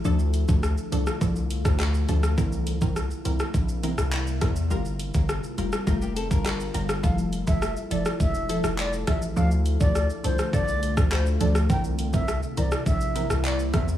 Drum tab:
HH |--x---x---x---x-|--x---x---x---x-|--x---x---x---x-|--x---x---x---x-|
SH |xxxxxxxxxxxxxxxx|xxxxxxxxxxxxxxxx|xxxxxxxxxxxxxxxx|xxxxxxxxxxxxxxxx|
CP |------------x---|------------x---|------------x---|------------x---|
SD |----r--r---rr--r|----r--r---r--r-|----r--r----r--r|----r--r---r--r-|
BD |---o----o--o----|o--o----o-----o-|---o----o--o----|o--o----o-----o-|

HH |--x---x---x---x-|--x---x---x---x-|
SH |xxxxxxxxxxxxxxxx|xxxxxxxxxxxxxxxx|
CP |------------x---|------------x---|
SD |----r--r---rr--r|----r--r---r--r-|
BD |---o----o--o----|o--o----o-----o-|